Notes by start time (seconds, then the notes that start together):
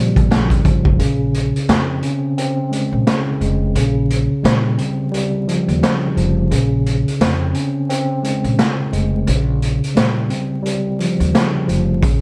Already playing: A#2 C#3 F3 G3 C4
0.16 kick, closed hi-hat
0.30 A#1 C#3, snare, closed hi-hat
0.50 kick, closed hi-hat
0.64 G1 F3, kick, closed hi-hat
0.85 F1, kick
0.99 A#1 C#3, closed hi-hat
1.34 closed hi-hat
1.56 closed hi-hat
1.69 F2 C4, snare, closed hi-hat
2.02 C#4, closed hi-hat
2.38 C4, closed hi-hat
2.71 G#3, closed hi-hat
2.92 A#1
3.07 C#3, snare, closed hi-hat
3.41 F1 G#3, closed hi-hat
3.75 A#1 C#3, closed hi-hat
4.10 closed hi-hat
4.43 A#2 G3, snare, closed hi-hat
4.78 C4, closed hi-hat
5.11 G3, closed hi-hat
5.48 F3, closed hi-hat
5.68 D#2, closed hi-hat
5.82 C#3, snare, closed hi-hat
6.16 F1 F3, closed hi-hat
6.50 A#1 C#3, closed hi-hat
6.86 closed hi-hat
7.08 closed hi-hat
7.20 F2 C4, snare, closed hi-hat
7.54 C#4, closed hi-hat
7.89 C4, closed hi-hat
8.23 G#3, closed hi-hat
8.44 A#1, closed hi-hat
8.59 C#3, snare, closed hi-hat
8.93 F1 G#3, closed hi-hat
9.27 A#1 C#3, closed hi-hat
9.62 closed hi-hat
9.84 closed hi-hat
9.95 A#2 G3, snare, closed hi-hat
10.30 C4, closed hi-hat
10.63 G3, closed hi-hat
10.99 F3, closed hi-hat
11.20 D#2, closed hi-hat
11.34 C#3, snare, closed hi-hat
11.68 F1 F3, closed hi-hat
12.02 A#1 C#3, kick, closed hi-hat